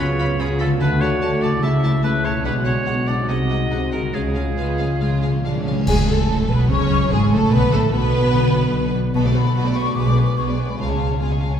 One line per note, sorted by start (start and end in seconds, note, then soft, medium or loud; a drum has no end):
0.00 0.35 C#2 medium
0.00 0.35 C#3 medium
0.00 0.73 C#3 medium
0.00 0.38 B3 medium
0.00 0.75 C#4 soft
0.00 0.38 F4 medium
0.00 0.77 F4 soft
0.00 0.80 B4 soft
0.00 0.42 C#5 medium
0.00 0.79 C#5 soft
0.19 0.27 C#4 medium
0.19 0.27 F4 medium
0.19 0.27 B5 medium
0.39 0.75 C#2 medium
0.39 0.75 C#3 medium
0.39 0.80 B3 medium
0.39 0.48 C#4 medium
0.39 0.79 F4 medium
0.39 0.48 F4 medium
0.39 0.60 G#4 medium
0.39 0.47 B5 medium
0.60 1.55 D3 medium
0.60 0.68 C#4 medium
0.60 0.69 F4 medium
0.60 0.70 A4 medium
0.60 0.68 B5 medium
0.67 1.48 A3 medium
0.71 1.59 F#4 soft
0.76 1.61 A3 medium
0.76 1.62 F#4 medium
0.76 1.57 A4 soft
0.80 1.16 D2 medium
0.80 1.16 D3 medium
0.80 0.89 A3 medium
0.80 0.90 F#4 medium
0.80 1.03 B4 loud
0.80 0.88 A5 medium
1.01 1.10 A3 soft
1.01 1.09 F#4 medium
1.01 1.43 C#5 medium
1.01 1.09 A5 medium
1.21 1.57 D2 medium
1.21 1.57 D3 medium
1.21 1.30 A3 medium
1.21 1.30 F#4 medium
1.21 1.29 A5 medium
1.42 2.38 C#3 medium
1.42 1.50 A3 medium
1.42 1.50 F#4 medium
1.42 1.65 D5 medium
1.42 1.50 A5 medium
1.49 2.40 A3 medium
1.53 2.42 E4 soft
1.58 1.98 C#2 medium
1.58 2.20 C#3 medium
1.58 2.29 A3 medium
1.58 2.29 E4 medium
1.58 2.45 A4 soft
1.63 1.99 C#3 medium
1.63 1.71 A3 medium
1.63 1.71 E4 medium
1.63 2.03 E5 medium
1.63 1.71 A5 medium
1.83 1.92 A3 medium
1.83 1.91 E4 medium
1.83 1.91 A5 medium
2.03 2.40 C#2 medium
2.03 2.40 C#3 medium
2.03 2.12 A3 medium
2.03 2.12 E4 medium
2.03 2.26 B4 loud
2.03 2.11 A5 medium
2.24 3.21 B2 medium
2.24 2.33 A3 medium
2.24 2.32 E4 medium
2.24 2.44 C#5 medium
2.24 2.33 A5 medium
2.32 3.14 G#3 soft
2.36 3.25 D4 soft
2.41 2.81 B1 medium
2.41 3.23 F#4 soft
2.45 2.81 B2 medium
2.45 2.54 G#3 medium
2.45 3.27 G#3 medium
2.45 2.53 D4 medium
2.45 3.27 F#4 medium
2.45 2.54 B4 medium
2.45 2.53 F#5 medium
2.65 2.75 G#3 soft
2.65 2.74 D4 medium
2.65 3.09 C#5 medium
2.65 2.73 F#5 medium
2.86 3.23 B1 medium
2.86 3.23 B2 medium
2.86 2.95 G#3 medium
2.86 2.95 D4 medium
2.86 2.94 F#5 medium
3.07 4.06 C3 medium
3.07 3.15 G#3 medium
3.07 3.16 D4 soft
3.07 3.28 D5 medium
3.07 3.15 F#5 medium
3.15 3.99 G#3 soft
3.19 4.11 D#4 soft
3.24 3.65 C2 medium
3.24 3.65 C3 medium
3.24 4.13 F#4 soft
3.28 4.12 G#3 medium
3.28 3.37 G#3 medium
3.28 3.36 D#4 medium
3.28 4.12 F#4 medium
3.28 3.91 D#5 medium
3.28 3.37 F#5 medium
3.49 3.58 G#3 soft
3.49 3.57 D#4 soft
3.49 3.58 F#5 soft
3.70 4.08 C2 medium
3.70 4.08 C3 medium
3.70 3.79 G#3 medium
3.70 3.79 D#4 medium
3.70 3.79 F#5 soft
3.92 5.79 C#3 soft
3.92 4.01 G#3 soft
3.92 4.00 D#4 soft
3.92 4.16 A#4 medium
3.92 4.00 F#5 medium
4.00 5.82 G#3 soft
4.05 7.49 C#4 soft
4.09 4.20 C#3 soft
4.09 5.86 F4 soft
4.09 4.21 F5 soft
4.14 4.52 C#2 medium
4.14 4.52 C#3 medium
4.14 4.22 G#3 medium
4.14 5.63 G#3 medium
4.14 4.22 C#4 soft
4.14 5.63 F4 medium
4.14 5.44 G#4 medium
4.29 4.36 C#3 soft
4.35 4.44 G#3 soft
4.35 4.43 C#4 soft
4.35 4.43 F5 soft
4.45 4.52 C#3 soft
4.53 4.95 C#2 medium
4.53 4.60 C#3 soft
4.57 4.96 C#3 medium
4.57 4.68 C#3 soft
4.57 4.65 G#3 soft
4.57 4.77 B3 medium
4.57 4.65 F5 soft
4.69 4.75 C#3 soft
4.76 4.84 C#3 soft
4.76 4.87 G#3 soft
4.76 5.01 C#4 medium
4.76 4.86 F5 soft
4.85 4.92 C#3 soft
4.93 4.99 C#3 soft
5.00 5.38 C#2 medium
5.00 5.39 C#3 medium
5.00 5.08 C#3 medium
5.00 5.09 G#3 soft
5.00 5.22 F4 medium
5.00 5.09 F5 soft
5.09 5.15 C#3 soft
5.17 5.23 C#3 medium
5.23 5.31 C#3 medium
5.23 5.31 G#3 soft
5.23 5.44 C#4 medium
5.23 5.31 F5 soft
5.32 5.39 C#3 medium
5.40 5.81 C#2 medium
5.40 5.47 C#3 medium
5.40 5.82 C#3 medium
5.45 5.54 C#3 medium
5.45 5.53 G#3 soft
5.45 5.65 D4 medium
5.45 5.53 F5 soft
5.56 5.63 C#3 medium
5.64 5.70 C#3 medium
5.64 5.75 G#3 soft
5.64 5.88 C#4 medium
5.64 5.75 F5 soft
5.71 5.78 C#3 medium
5.79 5.86 C#3 medium
5.86 5.94 G#1 medium
5.86 7.53 F#2 medium
5.86 6.46 F#2 medium
5.86 5.95 G#2 medium
5.86 5.96 G#3 medium
5.86 6.07 G#4 medium
5.86 5.92 G#5 medium
5.86 concert bass drum medium
5.86 crash medium
6.07 6.49 A1 medium
6.07 6.49 A2 medium
6.07 6.49 F#3 medium
6.07 6.50 A3 medium
6.07 6.50 A4 medium
6.07 6.48 A5 medium
6.29 7.09 F#4 medium
6.49 6.70 B1 medium
6.49 6.70 B2 medium
6.49 6.89 F#3 medium
6.49 6.71 B3 medium
6.49 6.70 B4 medium
6.49 6.71 B4 medium
6.49 6.57 B5 medium
6.70 7.11 C#2 medium
6.70 7.11 C#3 medium
6.70 7.53 C#3 medium
6.70 7.11 C#4 medium
6.70 7.11 C#5 medium
6.70 7.11 C#6 loud
6.90 7.29 F#3 soft
7.11 7.31 G#1 medium
7.11 7.32 G#2 medium
7.11 7.31 G#3 medium
7.11 7.91 F#4 medium
7.11 7.32 G#4 medium
7.11 7.20 G#4 medium
7.11 7.32 G#5 medium
7.30 7.52 A1 medium
7.30 7.52 A2 medium
7.30 8.52 F#3 medium
7.30 7.52 A3 medium
7.30 7.52 A4 medium
7.30 7.51 A5 medium
7.51 7.60 B1 medium
7.51 7.59 B2 medium
7.51 8.32 D3 medium
7.51 7.73 B3 medium
7.51 7.72 B4 medium
7.51 7.73 B4 medium
7.51 7.72 B5 loud
7.71 7.92 A1 medium
7.71 7.93 A2 medium
7.71 7.93 A3 medium
7.71 8.12 D4 medium
7.71 7.93 A4 medium
7.71 7.81 A4 medium
7.71 7.92 A5 medium
7.92 8.92 B1 medium
7.92 8.92 B2 medium
7.92 8.94 B3 medium
7.92 8.72 F#4 medium
7.92 8.91 B4 medium
7.92 8.92 B4 medium
7.92 8.92 B5 loud
8.14 8.93 D4 medium
8.33 9.15 D3 medium
8.54 9.97 F#3 medium
8.73 9.54 F#4 medium
8.94 10.80 D4 medium
9.14 9.50 B1 medium
9.14 9.50 B2 medium
9.14 9.94 B2 medium
9.14 9.23 B3 medium
9.14 9.23 F#4 medium
9.14 9.23 B4 medium
9.14 9.20 A5 loud
9.24 9.34 A3 medium
9.24 9.35 A4 medium
9.24 9.34 D5 medium
9.34 9.74 A3 medium
9.34 9.45 B3 medium
9.34 9.45 F#4 medium
9.34 9.45 B4 medium
9.34 9.74 B5 loud
9.45 9.55 A3 medium
9.45 9.55 A4 medium
9.45 9.55 D5 medium
9.54 9.90 B1 medium
9.54 9.90 B2 medium
9.54 9.64 B3 medium
9.54 9.97 F#4 medium
9.54 9.65 F#4 medium
9.54 9.65 B4 medium
9.65 9.75 A3 medium
9.65 9.75 A4 medium
9.65 9.75 D5 medium
9.74 9.97 A3 medium
9.74 9.85 B3 medium
9.74 9.85 F#4 medium
9.74 9.86 B4 medium
9.74 9.94 C#6 loud
9.85 9.96 A3 medium
9.85 9.95 A4 medium
9.85 9.96 D5 medium
9.94 10.31 B1 medium
9.94 10.80 B2 medium
9.94 10.31 B2 medium
9.94 10.05 B3 medium
9.94 10.04 G#4 medium
9.94 10.05 B4 medium
9.94 10.35 D6 loud
10.05 10.16 G#3 medium
10.05 10.15 B4 soft
10.05 10.16 D5 soft
10.15 10.56 G#3 soft
10.15 10.26 B3 soft
10.15 10.25 G#4 soft
10.15 10.27 B4 medium
10.25 10.37 G#3 soft
10.25 10.36 B4 soft
10.25 10.37 D5 soft
10.36 10.73 B1 medium
10.36 10.73 B2 medium
10.36 10.46 B3 soft
10.36 11.20 G#4 soft
10.36 10.46 G#4 medium
10.36 10.47 B4 soft
10.36 10.43 C#6 medium
10.45 10.58 G#3 soft
10.45 10.56 B4 soft
10.45 10.58 D5 soft
10.56 11.60 G#3 soft
10.56 10.68 B3 soft
10.56 10.67 G#4 soft
10.56 10.68 B4 soft
10.67 10.77 G#3 soft
10.67 10.78 B4 soft
10.67 10.79 D5 soft
10.67 10.78 B5 medium
10.77 11.15 C#2 medium
10.77 11.16 C#3 medium
10.77 11.60 C#3 medium
10.77 10.88 G#3 soft
10.77 10.87 F4 soft
10.77 10.89 F5 soft
10.77 11.20 A5 medium
10.88 10.99 C#4 soft
10.88 10.99 G#4 soft
10.88 11.00 C#5 soft
10.98 11.10 G#3 soft
10.98 11.41 C#4 soft
10.98 11.09 F4 soft
10.98 11.10 F5 soft
11.08 11.21 C#4 soft
11.08 11.20 G#4 soft
11.08 11.21 C#5 soft
11.19 11.57 C#2 medium
11.19 11.29 B2 medium
11.19 11.31 G#3 soft
11.19 11.29 F4 soft
11.19 11.60 G#4 soft
11.19 11.30 F5 soft
11.19 11.60 G#5 medium
11.30 11.42 C#4 soft
11.30 11.41 G#4 soft
11.30 11.41 C#5 soft
11.41 11.60 C#3 soft
11.41 11.53 G#3 soft
11.41 11.60 C#4 soft
11.41 11.52 F4 soft
11.41 11.52 F5 soft
11.51 11.60 C#4 soft
11.51 11.60 G#4 soft
11.51 11.60 C#5 soft